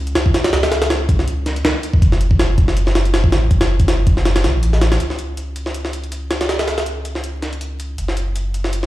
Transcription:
Already playing: sub bass C#2
0.07 closed hi-hat
0.15 snare, closed hi-hat
0.26 kick
0.34 snare, closed hi-hat
0.44 snare, closed hi-hat
0.53 sub bass C#2, snare, closed hi-hat
0.63 snare, closed hi-hat
0.72 snare, closed hi-hat
0.82 snare, closed hi-hat
0.90 snare, closed hi-hat
1.09 kick, closed hi-hat
1.19 snare
1.28 closed hi-hat
1.46 snare, closed hi-hat
1.56 closed hi-hat
1.65 snare, closed hi-hat
1.83 closed hi-hat
1.94 kick
2.02 sub bass F#1, kick, closed hi-hat
2.12 snare
2.21 closed hi-hat
2.31 kick
2.39 snare, closed hi-hat
2.58 kick, closed hi-hat
2.68 snare
2.77 closed hi-hat
2.87 snare
2.95 snare, closed hi-hat
3.05 closed hi-hat
3.14 snare, closed hi-hat
3.24 kick
3.32 sub bass A1, snare, closed hi-hat
3.51 sub bass F#1, kick, closed hi-hat
3.61 snare, closed hi-hat
3.80 kick, closed hi-hat
3.88 snare, closed hi-hat
4.07 kick, closed hi-hat
4.17 snare
4.25 snare, closed hi-hat
4.36 snare, closed hi-hat
4.44 sub bass C#2, snare, closed hi-hat
4.54 sub bass A1
4.63 closed hi-hat
4.73 snare
4.81 snare, closed hi-hat
4.92 snare, closed hi-hat
5.00 sub bass C#2, closed hi-hat
5.10 snare
5.19 closed hi-hat
5.37 closed hi-hat
5.56 closed hi-hat
5.66 snare
5.74 closed hi-hat
5.85 snare
5.93 closed hi-hat
6.04 closed hi-hat
6.12 closed hi-hat
6.31 snare, closed hi-hat
6.41 snare, closed hi-hat
6.49 snare, closed hi-hat
6.59 snare, closed hi-hat
6.68 snare, closed hi-hat
6.78 snare, closed hi-hat
6.86 closed hi-hat
7.05 closed hi-hat
7.15 snare
7.24 closed hi-hat
7.42 snare, closed hi-hat
7.53 closed hi-hat
7.61 closed hi-hat
7.80 closed hi-hat
7.98 sub bass F#1, closed hi-hat
8.08 snare
8.17 closed hi-hat
8.36 closed hi-hat
8.54 closed hi-hat
8.64 snare
8.73 closed hi-hat

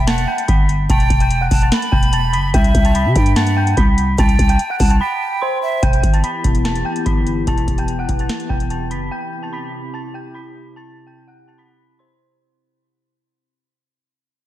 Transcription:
Already playing: 808-style bass E1
0.07 flute F#5, synth bell A5 A6, snare, closed hi-hat
0.18 closed hi-hat
0.27 synth bell G5 G6
0.38 closed hi-hat
0.48 808-style bass G1, synth bell B5 B6, kick, closed hi-hat
0.69 closed hi-hat
0.89 808-style bass E1, flute G5, synth bell A5 A6, kick, closed hi-hat
1.00 closed hi-hat
1.10 808-style bass E1, kick, closed hi-hat
1.20 synth bell G5 G6, closed hi-hat
1.30 closed hi-hat
1.41 synth bell F#5 F#6
1.51 808-style bass E1, flute A5, kick, open hi-hat
1.62 synth bell A5 A6, closed hi-hat
1.72 flute B5, snare, closed hi-hat
1.82 closed hi-hat
1.92 808-style bass E1, synth bell G5 G6, kick
2.03 closed hi-hat
2.13 synth bell A5 A6, closed hi-hat
2.33 808-style bass F#1, synth bell B5 B6, closed hi-hat
2.54 808-style bass C2, flute E5, synth bell G5 G6, kick, closed hi-hat
2.64 closed hi-hat
2.75 808-style bass C2, kick, closed hi-hat
2.85 synth bell A5 A6, closed hi-hat
2.95 synth bell B5 B6, closed hi-hat
3.05 808-style bass C3
3.16 808-style bass G2, flute G5, kick, closed hi-hat
3.26 closed hi-hat
3.36 flute F#5, synth bell A5 A6, snare, closed hi-hat
3.47 closed hi-hat
3.57 synth bell G5 G6
3.67 closed hi-hat
3.77 808-style bass C2, synth bell B5 B6, kick, closed hi-hat
3.98 closed hi-hat
4.18 808-style bass C2, flute G5, synth bell A5 A6, kick, closed hi-hat
4.29 closed hi-hat
4.39 808-style bass C2, kick, closed hi-hat
4.49 synth bell G5 G6, closed hi-hat
4.59 closed hi-hat
4.70 synth bell F#5 F#6
4.79 808-style bass C2, flute A5, kick, open hi-hat
4.90 synth bell A5 A6, closed hi-hat
5.00 flute G5, synth bell B5 B6
5.42 synth bell C5 C6
5.62 flute E5
5.83 808-style bass E1, ambient pad E3 B3 E4 G4, synth bell G5 G6, kick, closed hi-hat
5.93 closed hi-hat
6.03 808-style bass G1, kick, closed hi-hat
6.13 synth bell A5 A6, closed hi-hat
6.24 synth bell B5 B6, closed hi-hat
6.44 808-style bass E1, kick, closed hi-hat
6.55 closed hi-hat
6.65 synth bell A5 A6, snare, closed hi-hat
6.75 closed hi-hat
6.85 synth bell G5 G6
6.96 closed hi-hat
7.06 808-style bass G1, synth bell B5 B6, kick, closed hi-hat
7.27 closed hi-hat
7.47 808-style bass E1, synth bell A5 A6, kick, closed hi-hat
7.58 closed hi-hat
7.68 808-style bass E1, kick, closed hi-hat
7.78 synth bell G5 G6, closed hi-hat
7.88 closed hi-hat
7.99 synth bell F#5 F#6
8.09 808-style bass E1, kick, closed hi-hat
8.19 synth bell A5 A6, closed hi-hat
8.29 snare, closed hi-hat
8.40 closed hi-hat
8.49 808-style bass E1, synth bell G5 G6, kick
8.60 closed hi-hat
8.70 synth bell A5 A6, closed hi-hat
8.91 808-style bass F#1, synth bell B5 B6, closed hi-hat
9.11 ambient pad C3 C4 E4 G4, synth bell G5 G6
9.43 synth bell A5 A6
9.53 synth bell B5 B6
9.94 synth bell A5 A6
10.14 synth bell G5 G6
10.34 synth bell B5 B6
10.76 synth bell A5 A6
11.07 synth bell G5 G6
11.28 synth bell F#5 F#6
11.48 synth bell A5 A6
11.58 synth bell B5 B6
11.99 synth bell C5 C6

